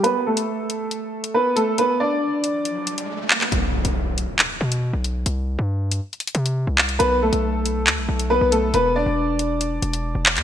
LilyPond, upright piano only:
\new Staff \with { instrumentName = "Upright piano" } { \time 4/4 \key b \phrygian \tempo 4 = 138 <b b'>8 <a a'>2~ <a a'>8 <b b'>8 <a a'>8 | <b b'>8 <d' d''>2.~ <d' d''>8 | r1 | r1 |
<b b'>8 <a a'>2~ <a a'>8 <b b'>8 <a a'>8 | <b b'>8 <d' d''>2.~ <d' d''>8 | }